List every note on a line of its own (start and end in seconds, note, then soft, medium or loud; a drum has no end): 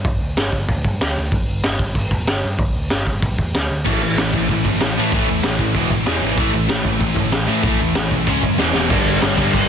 0.04 0.18 G1 medium
0.04 kick loud
0.04 open hi-hat medium
0.21 0.34 D2 medium
0.37 0.51 G1 medium
0.37 snare loud
0.37 open hi-hat medium
0.52 0.66 G1 medium
0.52 kick medium
0.68 0.82 D2 loud
0.68 kick loud
0.68 open hi-hat medium
0.85 0.98 G2 medium
0.85 kick medium
1.01 1.15 D2 medium
1.01 snare loud
1.01 open hi-hat medium
1.18 1.30 D2 medium
1.31 1.46 G1 medium
1.31 kick loud
1.31 open hi-hat medium
1.49 1.62 G1 medium
1.63 1.77 G1 medium
1.63 snare loud
1.63 open hi-hat medium
1.79 1.93 G1 medium
1.79 kick medium
1.95 2.09 G1 loud
1.95 kick loud
1.95 open hi-hat medium
2.11 2.24 E1 medium
2.11 kick medium
2.27 2.40 G1 loud
2.27 snare loud
2.27 open hi-hat medium
2.44 2.57 G2 medium
2.58 2.72 G1 medium
2.58 kick loud
2.58 open hi-hat medium
2.76 2.89 D2 medium
2.90 3.04 G1 medium
2.90 snare loud
2.90 open hi-hat medium
3.06 3.20 G1 medium
3.06 kick medium
3.22 3.35 B1 loud
3.22 kick loud
3.22 open hi-hat medium
3.38 3.51 E2 medium
3.38 kick medium
3.54 3.67 D2 medium
3.54 snare loud
3.54 open hi-hat medium
3.71 3.84 D2 medium
3.85 3.99 A1 loud
3.85 4.00 A2 loud
3.85 4.01 E3 loud
3.85 4.01 A3 loud
3.85 kick loud
3.85 crash loud
4.02 4.15 A1 medium
4.02 4.16 A2 medium
4.02 4.16 E3 medium
4.17 4.31 A1 medium
4.17 4.32 A2 medium
4.17 4.32 E3 medium
4.17 snare loud
4.17 open hi-hat medium
4.33 4.46 A1 medium
4.33 4.47 A2 medium
4.33 4.48 E3 medium
4.33 kick medium
4.49 4.62 A1 loud
4.49 4.64 A2 medium
4.49 4.64 E3 medium
4.49 kick loud
4.49 open hi-hat medium
4.65 4.78 G1 medium
4.65 4.80 A2 medium
4.65 4.80 E3 medium
4.65 kick loud
4.80 4.95 A1 loud
4.80 4.95 A2 medium
4.80 4.95 E3 loud
4.80 snare loud
4.80 open hi-hat medium
4.98 5.11 A2 medium
4.98 5.11 A2 loud
4.98 5.11 E3 medium
4.98 5.13 A3 loud
5.12 5.25 A1 medium
5.12 5.27 A2 loud
5.12 5.27 E3 medium
5.12 5.28 A3 loud
5.12 kick loud
5.12 open hi-hat medium
5.28 5.42 E2 medium
5.28 5.42 A2 medium
5.28 5.42 E3 medium
5.43 5.57 A1 medium
5.43 5.58 A2 medium
5.43 5.58 E3 medium
5.43 snare loud
5.43 open hi-hat medium
5.59 5.73 A1 medium
5.59 5.74 A2 medium
5.59 5.74 E3 medium
5.59 kick medium
5.74 5.88 E1 loud
5.74 5.90 E2 loud
5.74 5.91 B2 loud
5.74 5.91 E3 medium
5.74 kick loud
5.74 open hi-hat medium
5.90 6.04 A1 medium
5.90 6.05 E2 medium
5.90 6.06 B2 medium
5.90 kick medium
6.06 6.20 E1 loud
6.06 6.21 E2 loud
6.06 6.21 B2 loud
6.06 6.22 E3 loud
6.06 snare loud
6.06 open hi-hat medium
6.22 6.36 G#1 medium
6.22 6.37 E2 medium
6.22 6.37 B2 loud
6.22 6.37 E3 loud
6.37 6.51 A1 medium
6.37 6.53 A2 loud
6.37 6.53 E3 loud
6.37 6.54 A3 loud
6.37 kick loud
6.37 open hi-hat medium
6.54 6.67 A1 medium
6.54 6.67 A2 medium
6.54 6.67 E3 medium
6.68 6.83 A1 medium
6.68 6.82 A2 medium
6.68 6.83 E3 loud
6.68 snare loud
6.68 open hi-hat medium
6.83 6.98 A1 medium
6.83 6.98 A2 medium
6.83 6.99 E3 medium
6.83 kick medium
6.99 7.14 A1 loud
6.99 7.14 A2 medium
6.99 7.13 E3 medium
6.99 kick loud
6.99 open hi-hat medium
7.15 7.30 G1 medium
7.15 7.30 A2 medium
7.15 7.30 E3 medium
7.15 kick loud
7.32 7.46 A1 medium
7.32 7.46 A2 medium
7.32 7.46 E3 medium
7.32 snare loud
7.32 open hi-hat medium
7.47 7.61 A2 medium
7.47 7.62 A2 medium
7.47 7.62 E3 loud
7.47 7.63 A3 loud
7.62 7.77 A1 medium
7.62 7.79 A2 loud
7.62 7.79 E3 loud
7.62 7.80 A3 loud
7.62 kick loud
7.62 open hi-hat medium
7.80 7.94 E2 medium
7.80 7.94 A2 medium
7.80 7.95 E3 medium
7.94 8.09 A1 medium
7.94 8.10 A2 medium
7.94 8.10 E3 medium
7.94 snare loud
7.94 open hi-hat medium
8.11 8.25 B1 medium
8.11 8.26 A2 medium
8.11 8.27 E3 medium
8.11 kick medium
8.27 8.41 C#2 loud
8.27 8.41 C#3 medium
8.27 8.41 G#3 loud
8.27 8.43 C#4 loud
8.27 kick loud
8.27 open hi-hat medium
8.42 8.56 F#2 medium
8.42 8.57 C#3 medium
8.42 8.57 G#3 medium
8.42 kick medium
8.58 8.73 E1 medium
8.58 8.74 E2 loud
8.58 8.74 B2 medium
8.58 8.74 E3 loud
8.58 snare medium
8.74 8.90 E1 medium
8.74 8.90 E2 medium
8.74 8.91 B2 medium
8.74 8.91 E3 medium
8.74 snare loud
8.90 9.01 G1 medium
8.90 9.21 G2 loud
8.90 9.22 D3 loud
8.90 9.22 G3 loud
8.90 kick loud
8.90 crash loud
8.90 crash medium
9.06 9.16 G1 medium
9.22 9.33 G1 loud
9.22 9.38 G2 loud
9.22 9.38 D3 loud
9.22 9.36 G3 loud
9.22 snare loud
9.22 crash medium
9.37 9.48 G1 loud
9.37 9.53 G2 medium
9.37 9.54 D3 medium
9.37 9.54 G3 loud
9.37 kick medium
9.53 9.64 G1 loud
9.53 9.69 G2 loud
9.53 9.69 D3 loud
9.53 9.69 G3 loud
9.53 kick loud
9.53 crash medium